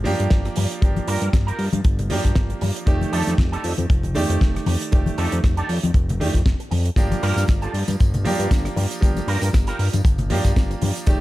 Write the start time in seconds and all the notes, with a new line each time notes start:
0.04 G2 F3 A#3 D4 G4, open hi-hat, high conga
0.20 G2, closed hi-hat
0.30 G1, kick, snare, closed hi-hat
0.45 muted clean electric guitar stroke, cross-stick, closed hi-hat
0.56 G2, muted clean electric guitar stroke, open hi-hat, high conga
0.71 muted clean electric guitar stroke, closed hi-hat
0.82 G1 F3 A#3 D4 G4, kick, closed hi-hat
0.96 closed hi-hat, high conga
1.07 G2 F4 G4 A#4, open hi-hat
1.22 G2, closed hi-hat
1.33 G1, kick, cross-stick, snare, closed hi-hat, high conga
1.47 F4 G4 A#4, closed hi-hat
1.59 G2, open hi-hat
1.73 G2, closed hi-hat, high conga
1.84 G1, muted clean electric guitar stroke, kick, closed hi-hat
1.99 closed hi-hat, low conga
2.10 G2 F3 A#3 D4 G4, open hi-hat, high conga
2.24 G2, kick, snare, closed hi-hat
2.35 G1, kick, snare, closed hi-hat
2.50 muted clean electric guitar stroke, closed hi-hat
2.61 G2, muted clean electric guitar stroke, open hi-hat, high conga
2.75 muted clean electric guitar stroke, closed hi-hat
2.86 F1 D#3 A3 G4 D5, kick, closed hi-hat
3.01 closed hi-hat, high conga
3.12 F2 D4 D#4 G4 A4, open hi-hat
3.27 F2, snare, closed hi-hat
3.38 F1, kick, cross-stick, snare, closed hi-hat, high conga
3.52 D4 D#4 G4 A4, closed hi-hat
3.64 F2, open hi-hat
3.78 F2, closed hi-hat, high conga
3.89 F1, muted clean electric guitar stroke, kick, closed hi-hat
4.03 closed hi-hat, low conga
4.15 F2 D#3 A3 G4 D5, open hi-hat, high conga
4.30 F2, closed hi-hat
4.41 F1, kick, snare, closed hi-hat
4.55 muted clean electric guitar stroke, cross-stick, closed hi-hat
4.66 F2, muted clean electric guitar stroke, open hi-hat, high conga
4.81 muted clean electric guitar stroke, closed hi-hat
4.91 F1 D#3 A3 G4 D5, kick, closed hi-hat
5.06 closed hi-hat, high conga
5.17 F2 D4 D#4 G4 A4, open hi-hat
5.32 F2, closed hi-hat
5.44 F1, kick, cross-stick, snare, closed hi-hat, high conga
5.57 D4 D#4 G4 A4, closed hi-hat
5.69 F2, open hi-hat
5.83 F2, closed hi-hat, high conga
5.94 F1, muted clean electric guitar stroke, kick, closed hi-hat
6.09 closed hi-hat, low conga
6.20 F2 D#3 A3 D4 G4, open hi-hat, high conga
6.34 F2, kick, snare, closed hi-hat
6.46 F1, kick, snare, closed hi-hat
6.59 muted clean electric guitar stroke, closed hi-hat
6.71 F2, muted clean electric guitar stroke, open hi-hat, high conga
6.85 muted clean electric guitar stroke, closed hi-hat
6.96 G1 F3 A#3 D4 G4, kick, closed hi-hat, tambourine
7.11 closed hi-hat, tambourine, high conga
7.22 G2 F4 G4 A#4, open hi-hat
7.37 G2, snare, closed hi-hat, tambourine
7.48 G1, kick, cross-stick, snare, closed hi-hat, tambourine, high conga
7.62 F4 G4 A4, closed hi-hat, tambourine
7.74 G2, open hi-hat
7.88 G2, closed hi-hat, tambourine, high conga
7.99 G1, muted clean electric guitar stroke, kick, closed hi-hat, tambourine
8.14 closed hi-hat, tambourine, low conga
8.24 G2 F3 A#3 D4 G4, open hi-hat, high conga
8.39 G2, closed hi-hat, tambourine
8.51 G1, kick, snare, closed hi-hat, tambourine
8.65 muted clean electric guitar stroke, cross-stick, closed hi-hat, tambourine
8.76 G2, muted clean electric guitar stroke, open hi-hat, high conga
8.91 muted clean electric guitar stroke, closed hi-hat, tambourine
9.01 G1 F3 A#3 D4 G4, kick, closed hi-hat, tambourine
9.16 closed hi-hat, tambourine, high conga
9.28 G2 F4 G4 A#4, open hi-hat
9.42 G2, closed hi-hat, tambourine
9.53 G1, kick, cross-stick, snare, closed hi-hat, tambourine, high conga
9.67 F4 G4 A#4, closed hi-hat, tambourine
9.79 G2, open hi-hat
9.93 G2, closed hi-hat, tambourine, high conga
10.04 G1, muted clean electric guitar stroke, kick, closed hi-hat, tambourine
10.18 closed hi-hat, tambourine, low conga
10.30 G2 F3 A#3 D4 G4, open hi-hat, high conga
10.45 G2, kick, snare, closed hi-hat, tambourine
10.56 G1, kick, snare, closed hi-hat, tambourine
10.71 muted clean electric guitar stroke, closed hi-hat, tambourine
10.82 G2, muted clean electric guitar stroke, open hi-hat, high conga
10.96 muted clean electric guitar stroke, closed hi-hat, tambourine
11.06 F1 D#3 A3 G4 D5, kick, closed hi-hat, tambourine